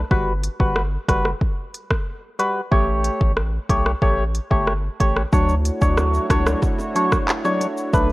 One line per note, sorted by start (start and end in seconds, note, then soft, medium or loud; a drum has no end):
0.11 0.49 G1 loud
0.11 0.33 G3 medium
0.11 0.33 F#4 medium
0.11 0.33 B4 loud
0.11 kick loud
0.44 closed hi-hat medium
0.60 0.98 G1 loud
0.60 0.82 G3 medium
0.60 0.82 F#4 medium
0.60 0.82 B4 medium
0.60 kick medium
0.76 cross-stick loud
1.08 1.34 F#1 medium
1.08 1.31 G3 medium
1.08 1.31 F#4 medium
1.08 1.31 B4 medium
1.08 kick medium
1.08 cross-stick medium
1.08 closed hi-hat medium
1.25 cross-stick medium
1.41 kick medium
1.74 closed hi-hat medium
1.90 kick medium
1.90 cross-stick medium
2.39 2.61 G3 medium
2.39 2.61 F#4 medium
2.39 2.61 B4 medium
2.39 closed hi-hat medium
2.71 3.09 A1 loud
2.71 3.32 A3 medium
2.71 3.32 G4 medium
2.71 3.32 C#5 loud
2.71 kick loud
3.04 closed hi-hat medium
3.21 3.58 A1 medium
3.21 kick medium
3.37 cross-stick medium
3.69 3.95 B1 loud
3.69 3.91 A3 medium
3.69 3.92 G4 medium
3.69 3.92 C#5 medium
3.69 kick loud
3.69 closed hi-hat medium
3.86 cross-stick medium
4.02 4.40 A1 loud
4.02 4.24 A3 medium
4.02 4.24 G4 medium
4.02 4.24 C#5 loud
4.02 kick medium
4.35 closed hi-hat medium
4.51 4.89 G1 medium
4.51 4.73 A3 medium
4.51 4.73 G4 medium
4.51 4.73 C#5 medium
4.51 kick medium
4.67 cross-stick medium
5.00 5.25 A1 medium
5.00 5.22 A3 medium
5.00 5.22 G4 medium
5.00 5.22 C#5 medium
5.00 kick medium
5.00 closed hi-hat medium
5.16 cross-stick medium
5.32 5.70 D2 loud
5.32 5.54 F#3 loud
5.32 7.91 A3 medium
5.32 5.55 D4 medium
5.32 7.91 D4 medium
5.32 7.91 E4 medium
5.32 7.91 F#4 medium
5.32 7.91 C#5 medium
5.32 5.55 C#5 loud
5.32 kick loud
5.32 shaker medium
5.49 shaker soft
5.65 closed hi-hat medium
5.65 shaker medium
5.81 6.19 D2 loud
5.81 6.27 F#3 medium
5.81 6.27 D4 medium
5.81 6.27 C#5 medium
5.81 kick loud
5.81 shaker medium
5.98 cross-stick loud
5.98 high bongo medium
5.98 shaker medium
6.14 shaker medium
6.30 6.55 C#2 medium
6.30 6.60 F#3 medium
6.30 6.60 D4 medium
6.30 6.61 C#5 medium
6.30 kick loud
6.30 cross-stick loud
6.30 closed hi-hat medium
6.30 low bongo medium
6.30 shaker medium
6.47 cross-stick loud
6.47 high bongo medium
6.47 shaker medium
6.62 kick medium
6.62 high bongo medium
6.62 shaker medium
6.79 high bongo medium
6.79 shaker medium
6.95 7.17 F#3 medium
6.95 7.18 D4 medium
6.95 7.18 C#5 medium
6.95 closed hi-hat medium
6.95 shaker medium
7.12 kick medium
7.12 cross-stick loud
7.12 shaker medium
7.28 clap medium
7.28 shaker medium
7.44 7.66 F#3 medium
7.44 7.67 D4 medium
7.44 7.67 C#5 medium
7.44 high bongo medium
7.44 shaker soft
7.60 closed hi-hat medium
7.60 low bongo medium
7.60 shaker medium
7.77 shaker medium
7.93 8.12 B1 loud
7.93 8.12 A3 loud
7.93 8.12 A3 medium
7.93 8.12 B3 medium
7.93 8.12 D4 medium
7.93 8.12 B4 loud
7.93 kick loud
7.93 shaker medium